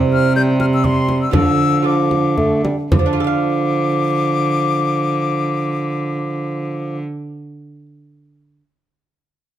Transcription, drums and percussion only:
0.60 frame drum medium
0.84 frame drum medium
1.09 frame drum medium
1.33 frame drum medium
2.11 frame drum medium
2.38 frame drum medium
2.65 frame drum medium
2.92 frame drum loud

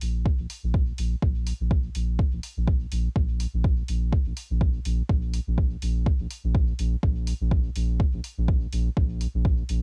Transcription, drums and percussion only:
0.01 open hi-hat medium
0.26 kick loud
0.50 open hi-hat medium
0.74 kick loud
0.98 open hi-hat medium
1.22 kick loud
1.46 open hi-hat medium
1.71 kick loud
1.95 open hi-hat medium
2.19 kick loud
2.43 open hi-hat medium
2.67 kick loud
2.92 open hi-hat medium
3.16 kick loud
3.40 open hi-hat medium
3.64 kick loud
3.88 open hi-hat medium
4.13 kick loud
4.37 open hi-hat medium
4.61 kick loud
4.85 open hi-hat medium
5.09 kick loud
5.34 open hi-hat medium
5.58 kick loud
5.82 open hi-hat medium
6.06 kick loud
6.31 open hi-hat medium
6.55 kick loud
6.79 open hi-hat medium
7.03 kick loud
7.27 open hi-hat medium
7.51 kick loud
7.76 open hi-hat medium
8.00 kick loud
8.24 open hi-hat medium
8.48 kick loud
8.72 open hi-hat medium
8.97 kick loud
9.21 open hi-hat medium
9.45 kick loud
9.69 open hi-hat medium

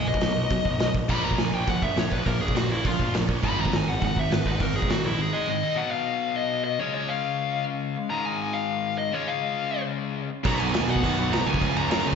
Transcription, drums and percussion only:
0.14 kick medium
0.21 snare loud
0.21 open hi-hat medium
0.50 kick loud
0.50 open hi-hat medium
0.65 kick medium
0.80 snare loud
0.80 open hi-hat medium
0.95 kick medium
1.09 kick medium
1.09 crash loud
1.31 kick medium
1.37 snare loud
1.37 open hi-hat medium
1.67 kick loud
1.67 open hi-hat medium
1.82 kick medium
1.97 snare loud
1.97 open hi-hat medium
2.12 kick medium
2.26 kick loud
2.26 open hi-hat medium
2.48 kick medium
2.56 snare loud
2.56 open hi-hat medium
2.85 kick loud
2.85 open hi-hat medium
3.00 kick medium
3.14 snare loud
3.14 open hi-hat medium
3.29 kick medium
3.43 kick loud
3.43 crash loud
3.65 kick medium
3.72 snare loud
3.72 open hi-hat medium
4.02 kick loud
4.02 open hi-hat medium
4.17 kick medium
4.31 snare loud
4.31 open hi-hat medium
4.46 kick medium
4.60 kick loud
4.60 open hi-hat medium
4.82 kick medium
4.90 snare loud
4.90 open hi-hat medium
10.45 kick loud
10.45 crash loud
10.60 crash medium
10.74 snare loud
10.74 crash medium
10.88 crash medium
10.96 kick medium
11.03 kick loud
11.03 crash medium
11.18 crash medium
11.33 snare loud
11.33 crash medium
11.47 crash medium
11.54 kick medium
11.61 kick loud
11.61 crash medium
11.76 crash medium
11.91 snare loud
11.91 crash loud
12.06 crash medium

